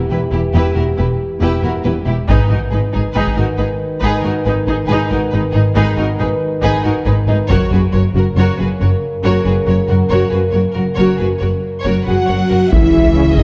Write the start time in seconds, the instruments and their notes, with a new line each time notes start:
Already playing: french horn section E3 G4
0.09 double bass section E1, cello section E2, viola section E4, violin section G4 B4
0.31 double bass section E1, cello section E2, violin section E4 G4, viola section E4
0.53 double bass section E1, cello section E2, viola section E4, violin section G4 B4
0.74 double bass section E1, cello section E2, viola section E4, violin section F#4 A#4
0.97 double bass section E1, cello section E2, viola section E4, violin section G4 B4
1.41 double bass section E1, cello section E2, viola section E4, violin section G4 B4
1.63 double bass section E1, cello section E2, viola section E4, violin section F#4 A#4
1.84 double bass section E1, cello section E2, viola section E4, violin section G4 B4
2.06 double bass section E1, cello section E2, violin section E4 G4, viola section E4
2.28 double bass section G#1, cello section G#2, timpani G#2, french horn section D#3 B4, viola section D#4, violin section G#4 B4, taiko
2.48 double bass section G#1, cello section G#2, viola section D#4, violin section F#4 A#4
2.71 double bass section G#1, cello section G#2, viola section D#4, violin section G#4 B4
2.93 double bass section G#1, cello section G#2, violin section D#4 G#4, viola section D#4
3.13 double bass section G#1, cello section G#2, viola section D#4, violin section G#4 B4
3.27 taiko
3.36 double bass section G#1, cello section G#2, viola section D#4, violin section F#4 A#4
3.57 double bass section G#1, cello section G#2, viola section D#4, violin section G#4 B4
4.01 double bass section G#1, cello section G#2, viola section D#4, violin section G#4 B4
4.22 double bass section G#1, cello section G#2, viola section D#4, violin section F#4 A#4
4.45 double bass section G#1, cello section G#2, viola section D#4, violin section G#4 B4
4.67 double bass section G#1, cello section G#2, violin section D#4 G#4, viola section D#4
4.88 double bass section G#1, cello section G#2, viola section D#4, violin section G#4 B4
5.11 double bass section G#1, cello section G#2, viola section D#4, violin section F#4 A#4
5.31 double bass section G#1, cello section G#2, viola section D#4, violin section G#4 B4
5.52 double bass section G#1, cello section G#2, viola section D#4, violin section D#4 G#4
5.75 double bass section G#1, cello section G#2, viola section D#4, violin section G#4 B4
5.97 double bass section G#1, cello section G#2, viola section D#4, violin section F#4 A#4
6.19 double bass section G#1, cello section G#2, viola section D#4, violin section G#4 B4
6.62 double bass section G#1, cello section G#2, viola section D#4, violin section G#4 B4
6.83 double bass section G#1, cello section G#2, viola section D#4, violin section F#4 A#4
7.05 double bass section G#1, cello section G#2, viola section D#4, violin section G#4 B4
7.28 double bass section G#1, cello section G#2, violin section D#4 G#4, viola section D#4
7.49 double bass section F#1, cello section F#2, french horn section C#3 A#4, viola section F#4, violin section A#4 C#5, taiko
7.71 double bass section F#1, cello section F#2, viola section F#4, violin section G#4 B4
7.93 double bass section F#1, cello section F#2, viola section F#4, violin section A#4 C#5
8.15 double bass section F#1, cello section F#2, viola section F#4, violin section F#4 A#4
8.36 double bass section F#1, cello section F#2, viola section F#4, violin section A#4 C#5
8.58 double bass section F#1, cello section F#2, viola section F#4, violin section G#4 B4
8.80 double bass section F#1, cello section F#2, viola section F#4, violin section A#4 C#5
9.23 double bass section F#1, cello section F#2, viola section F#4, violin section A#4 C#5
9.45 double bass section F#1, cello section F#2, viola section F#4, violin section G#4 B4
9.67 double bass section F#1, cello section F#2, viola section F#4, violin section A#4 C#5
9.88 double bass section F#1, cello section F#2, violin section F#4 A#4, viola section F#4
10.09 double bass section F#1, cello section F#2, viola section F#4, violin section A#4 C#5, reverse cymbal
10.30 double bass section F#1, cello section F#2, viola section F#4, violin section G#4 B4
10.52 double bass section F#1, cello section F#2, viola section F#4, violin section A#4 C#5
10.74 double bass section F#1, cello section F#2, viola section F#4, violin section F#4 A#4
10.95 double bass section F#1, cello section F#2, viola section F#4, violin section A#4 C#5
11.18 double bass section F#1, cello section F#2, viola section F#4, violin section G#4 B4
11.39 double bass section F#1, cello section F#2, viola section F#4, violin section A#4 C#5
11.83 double bass section F#1, cello section F#2, viola section F#4, violin section A#4 C#5
12.03 viola section F#4, violin section B4 F#5, trumpet section F#5
12.07 double bass section F#1, cello section F#2 F#3, french horn section F#4, violin section G#4 F#5
12.26 double bass section F#1, viola section F#4, violin section A#4 C#5
12.30 cello section F#2
12.49 double bass section F#1, cello section F#2, viola section F#4, violin section F#4 A#4
12.70 tuba C#2, double bass section C#2, cello section E3, viola section C#4 G#4, french horn section E4, violin section E5, trumpet section E5, taiko, impact
13.16 trombone section C#3 C#4
13.35 cello section D#3, french horn section D#4, violin section D#5, trumpet section D#5, taiko